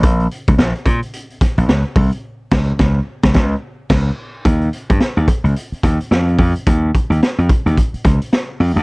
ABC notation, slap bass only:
X:1
M:4/4
L:1/16
Q:"Swing 16ths" 1/4=108
K:Ebmix
V:1 name="Slap bass" clef=bass
B,,,2 z D,, B,,, z B,, z4 B,,, D,, z C,, z | z2 D,,2 D,,2 z D,, D,,2 z2 D,,2 z2 | E,,2 z G,, z E,, z D,, z2 E,, z F,,2 F,, z | E,,2 z E,, z F,, z E,, z2 D,, z3 F,, =D,, |]